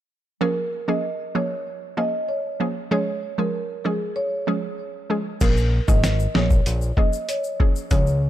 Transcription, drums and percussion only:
5.41 kick, closed hi-hat, crash, shaker
5.57 shaker
5.88 kick, shaker
6.04 snare, closed hi-hat, shaker
6.20 shaker
6.35 snare
6.50 kick, shaker
6.66 closed hi-hat, shaker
6.82 shaker
6.97 kick
7.13 shaker
7.29 closed hi-hat, shaker
7.44 shaker
7.60 kick
7.76 shaker
7.91 kick, closed hi-hat, shaker
8.07 shaker

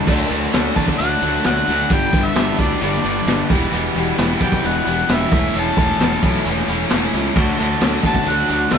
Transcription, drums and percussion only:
0.07 kick, crash
0.31 closed hi-hat
0.53 snare, closed hi-hat, tambourine
0.76 kick, closed hi-hat
0.88 kick, closed hi-hat, tambourine
0.99 closed hi-hat
1.22 closed hi-hat, tambourine
1.33 closed hi-hat
1.44 snare, closed hi-hat, tambourine
1.56 closed hi-hat
1.67 closed hi-hat, tambourine
1.79 closed hi-hat
1.90 kick, closed hi-hat
2.01 closed hi-hat
2.13 kick, closed hi-hat, tambourine
2.35 snare, closed hi-hat, tambourine
2.47 closed hi-hat
2.58 kick, closed hi-hat
2.69 tambourine
2.81 closed hi-hat
2.93 snare
3.04 closed hi-hat, tambourine
3.27 snare, closed hi-hat, tambourine
3.50 kick, closed hi-hat, tambourine
3.61 closed hi-hat
3.72 closed hi-hat
3.95 closed hi-hat, tambourine
4.18 snare, closed hi-hat, tambourine
4.40 kick, closed hi-hat
4.52 kick, closed hi-hat, tambourine
4.63 closed hi-hat
4.86 closed hi-hat, tambourine
4.98 closed hi-hat
5.08 snare, closed hi-hat, tambourine
5.21 closed hi-hat
5.32 kick, closed hi-hat, tambourine
5.43 closed hi-hat, tambourine
5.54 closed hi-hat
5.65 closed hi-hat
5.77 kick, closed hi-hat, tambourine
6.00 snare, closed hi-hat, tambourine
6.11 closed hi-hat, tambourine
6.23 kick, closed hi-hat, tambourine
6.35 tambourine
6.45 closed hi-hat
6.57 snare, tambourine
6.67 closed hi-hat, tambourine
6.80 tambourine
6.90 snare, closed hi-hat, tambourine
7.13 closed hi-hat
7.25 closed hi-hat, tambourine
7.36 kick, crash
7.58 closed hi-hat, tambourine
7.81 snare, closed hi-hat, tambourine
8.03 kick, closed hi-hat
8.14 kick, closed hi-hat, tambourine
8.25 closed hi-hat
8.48 closed hi-hat, tambourine
8.60 closed hi-hat
8.70 snare, closed hi-hat, tambourine

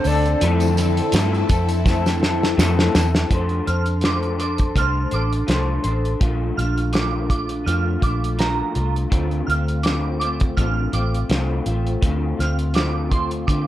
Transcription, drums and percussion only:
0.04 open hi-hat, tambourine
0.26 closed hi-hat
0.41 closed hi-hat
0.60 closed hi-hat, tambourine
0.77 closed hi-hat, tambourine
0.97 closed hi-hat
1.12 snare, closed hi-hat, tambourine
1.34 closed hi-hat
1.49 kick, closed hi-hat, tambourine
1.69 closed hi-hat, tambourine
1.86 kick, snare, tambourine
2.06 snare, tambourine
2.23 snare
2.43 snare
2.59 snare, tambourine
2.79 snare
2.95 snare, tambourine
3.15 snare
3.31 kick, closed hi-hat
3.49 closed hi-hat
3.67 closed hi-hat
3.86 closed hi-hat
4.01 snare, closed hi-hat
4.23 closed hi-hat
4.40 closed hi-hat
4.58 kick, closed hi-hat
4.76 kick, closed hi-hat
5.11 closed hi-hat
5.33 closed hi-hat
5.48 snare, closed hi-hat
5.84 closed hi-hat
6.05 closed hi-hat
6.21 kick, closed hi-hat
6.59 closed hi-hat
6.78 closed hi-hat
6.93 snare, closed hi-hat
7.30 kick, closed hi-hat
7.49 closed hi-hat
7.67 closed hi-hat
8.02 kick, closed hi-hat
8.24 closed hi-hat
8.39 snare, closed hi-hat
8.75 closed hi-hat
8.96 closed hi-hat
9.12 kick, closed hi-hat
9.31 closed hi-hat
9.50 closed hi-hat
9.68 closed hi-hat
9.83 snare, closed hi-hat
10.21 closed hi-hat
10.40 kick, closed hi-hat
10.57 kick, closed hi-hat
10.93 closed hi-hat
11.14 closed hi-hat
11.30 snare, closed hi-hat
11.66 closed hi-hat
11.87 closed hi-hat
12.02 kick, closed hi-hat
12.40 snare, closed hi-hat
12.59 closed hi-hat
12.74 snare, closed hi-hat
13.12 kick, closed hi-hat
13.31 closed hi-hat
13.48 kick, closed hi-hat

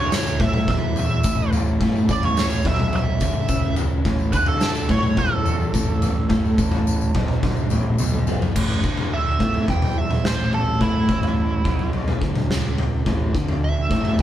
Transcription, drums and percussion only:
0.12 snare, tambourine
0.27 tambourine
0.40 kick, floor tom, mid tom, tambourine
0.54 mid tom
0.68 kick, floor tom, mid tom, tambourine
0.96 floor tom, tambourine
1.11 tambourine
1.23 kick, tambourine
1.53 floor tom, tambourine
1.81 kick, floor tom, tambourine
1.95 tambourine
2.09 kick, tambourine
2.23 floor tom
2.37 snare, tambourine
2.50 tambourine
2.64 kick, floor tom, mid tom, tambourine
2.80 mid tom
2.93 floor tom, mid tom, tambourine
3.20 kick, floor tom, tambourine
3.34 tambourine
3.48 kick, tambourine
3.76 floor tom, tambourine
4.05 kick, floor tom, tambourine
4.19 tambourine
4.33 kick, tambourine
4.46 floor tom
4.61 snare, tambourine
4.75 tambourine
4.89 kick, floor tom, mid tom
5.03 mid tom
5.17 kick, floor tom, mid tom, tambourine
5.46 floor tom, tambourine
5.60 tambourine
5.74 kick, tambourine
6.02 floor tom, tambourine
6.30 kick, floor tom, tambourine
6.45 tambourine
6.58 kick, tambourine
6.72 floor tom, tambourine
6.87 tambourine
7.01 tambourine
7.15 kick, floor tom, mid tom
7.28 mid tom
7.43 kick, floor tom, mid tom, tambourine
7.56 tambourine
7.70 floor tom, tambourine
7.98 high tom, tambourine
8.14 mid tom
8.27 mid tom, tambourine
8.41 floor tom, tambourine
8.56 kick, floor tom, crash
8.84 kick
8.97 floor tom
9.40 kick, floor tom
9.54 floor tom
9.68 kick, floor tom
9.82 floor tom, mid tom
10.11 mid tom
10.25 snare
10.53 floor tom
10.81 kick, floor tom
11.09 kick
11.23 floor tom
11.65 kick, floor tom
11.79 floor tom
11.93 floor tom
12.08 floor tom, mid tom
12.22 kick
12.36 mid tom
12.51 snare
12.78 floor tom
13.06 kick, floor tom
13.35 kick
13.48 floor tom
13.91 kick, floor tom
14.05 floor tom
14.19 kick

